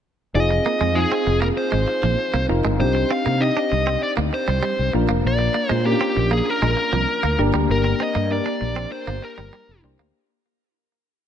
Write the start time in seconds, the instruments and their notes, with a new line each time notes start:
0.35 fretless electric bass F1, synth keys C4 D#4 F4 G#4, lead electric guitar D#5
0.51 muted clean electric guitar stroke
0.66 clean electric guitar A#3
0.81 fretless electric bass F2, clean electric guitar G#3
0.95 synth keys C4 D#4 F4 G#4, lead electric guitar G#4
1.12 clean electric guitar C4
1.27 fretless electric bass F1, muted clean electric guitar stroke
1.41 clean electric guitar A#3, lead electric guitar A#4
1.57 lead electric guitar C5
1.72 fretless electric bass G#1, clean electric guitar G#3
1.88 muted clean electric guitar stroke
2.03 fretless electric bass A#1, clean electric guitar F3
2.34 fretless electric bass C2, clean electric guitar A#3
2.48 fretless electric bass F1, synth keys C4 D#4 F4 A#4, muted clean electric guitar stroke
2.65 fretless electric bass G1, clean electric guitar G#3
2.79 fretless electric bass C2, synth keys C4 D4 D#4 G4, lead electric guitar C5
2.95 muted clean electric guitar stroke
3.11 clean electric guitar C4, lead electric guitar F5
3.26 fretless electric bass C3, clean electric guitar A#3
3.41 synth keys C4 D#4 G4, lead electric guitar D#5
3.57 clean electric guitar D4
3.72 fretless electric bass C2, muted clean electric guitar stroke
3.87 clean electric guitar C4
4.03 lead electric guitar D5
4.17 fretless electric bass D2, clean electric guitar A#3
4.33 lead electric guitar C5, muted clean electric guitar stroke
4.48 fretless electric bass C2, clean electric guitar G3
4.63 clean electric guitar G3
4.79 fretless electric bass C2
4.93 fretless electric bass A#1, synth keys A#3 D4 F4 A#4, muted clean electric guitar stroke
5.09 fretless electric bass F1, clean electric guitar A#3
5.25 fretless electric bass A#1, lead electric guitar D5
5.39 muted clean electric guitar stroke
5.54 clean electric guitar A#3
5.69 fretless electric bass A#2, clean electric guitar G#3, lead electric guitar C5
5.85 synth keys A#3 C#4 F4 A#4, lead electric guitar G4
5.92 synth keys D4
6.01 clean electric guitar C4
6.17 fretless electric bass A#1, muted clean electric guitar stroke
6.31 clean electric guitar A#3, lead electric guitar G#4
6.50 lead electric guitar A#4
6.62 fretless electric bass A#1, clean electric guitar G#3
6.77 muted clean electric guitar stroke
6.93 fretless electric bass C2, clean electric guitar F3
7.23 fretless electric bass D2, clean electric guitar A#3
7.38 fretless electric bass G1, synth keys A#3 D4 G4 A#4, muted clean electric guitar stroke
7.54 fretless electric bass D2, clean electric guitar G3
7.69 fretless electric bass G1, lead electric guitar A#4
7.84 muted clean electric guitar stroke
8.00 clean electric guitar C4, lead electric guitar D#5
8.15 fretless electric bass G2, clean electric guitar A#3
8.31 synth keys A#3 D4 G4 A#4, lead electric guitar D5
8.46 clean electric guitar D4
8.61 fretless electric bass A#1, muted clean electric guitar stroke
8.76 clean electric guitar C4
8.92 lead electric guitar C5
9.07 fretless electric bass G1, clean electric guitar A#3
9.22 lead electric guitar A#4, muted clean electric guitar stroke
9.38 fretless electric bass G1, clean electric guitar G3
9.53 clean electric guitar G3
9.69 fretless electric bass F1
9.83 fretless electric bass C2, synth keys A#3 D4 G4 C5, muted clean electric guitar stroke
9.99 fretless electric bass D2, clean electric guitar A#3